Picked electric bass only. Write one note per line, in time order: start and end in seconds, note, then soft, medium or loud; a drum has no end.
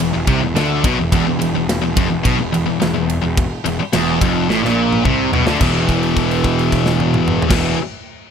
0.00 0.13 E1 medium
0.14 0.27 E1 medium
0.27 0.40 C2 loud
0.42 0.55 E1 medium
0.56 0.82 D2 medium
0.85 0.97 B1 loud
1.00 1.12 E1 medium
1.13 1.25 E1 loud
1.28 1.40 E1 medium
1.43 1.55 E1 medium
1.58 1.82 E1 medium
1.86 1.96 E1 medium
1.97 2.10 F1 loud
2.13 2.25 E1 medium
2.25 2.38 B1 loud
2.41 2.53 E1 medium
2.55 2.67 E1 medium
2.68 2.80 E1 medium
2.82 2.94 E1 medium
2.96 3.21 E1 medium
3.24 3.49 E1 medium
3.66 3.78 E1 medium
3.80 muted picked electric bass stroke soft
3.94 4.20 E1 loud
4.21 4.47 F1 loud
4.50 4.62 A1 medium
4.65 5.03 A#1 loud
5.06 5.31 C2 medium
5.33 5.46 B1 loud
5.47 5.60 D2 loud
5.61 7.41 E1 loud
7.50 7.74 E1 loud